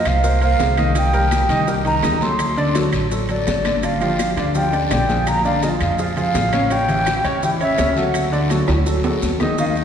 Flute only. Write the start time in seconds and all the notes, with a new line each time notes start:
0.08 F5
0.44 F5
0.97 G5
1.69 G5
1.87 A#5
2.22 C6
3.30 D5
3.84 F5
4.56 G5
4.92 G5
5.28 A#5
5.46 F5
5.64 D#5
5.81 F5
6.18 F5
6.72 G5
7.44 G5
7.62 E5
7.98 F#5
9.60 F5
9.69 F5
9.77 D#5